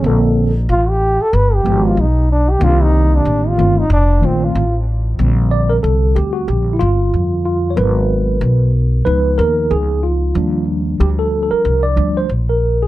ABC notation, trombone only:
X:1
M:4/4
L:1/16
Q:"Swing 16ths" 1/4=93
K:Bb
V:1 name="Trombone"
E z3 F G2 A =B G2 F E2 D G | F E2 D2 F2 E D2 C F2 z3 | z16 | z16 |
z16 |]